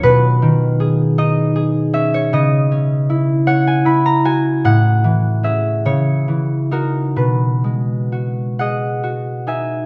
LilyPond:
\new Staff \with { instrumentName = "Harp" } { \time 6/8 \key b \major \tempo 4. = 51 << { <b' cis'' dis''>4. dis''4 e''16 cis''16 | dis''4. fis''16 gis''16 b''16 ais''16 gis''8 | fis''4 e''8 cis''4 ais'8 | b'4. <dis'' fis''>4 <e'' gis''>8 | } \\ { <b, fis cis' dis' fis'>8 dis8 gis'8 dis'8 gis'8 cis'8 | cis8 cis'8 e'8 cis''8 e'8 fis'8 | a,8 e8 <cis' gis'>8 cis8 e8 <dis' fis'>8 | b,8 gis8 fis'8 gis'8 fis'8 dis'8 | } >> }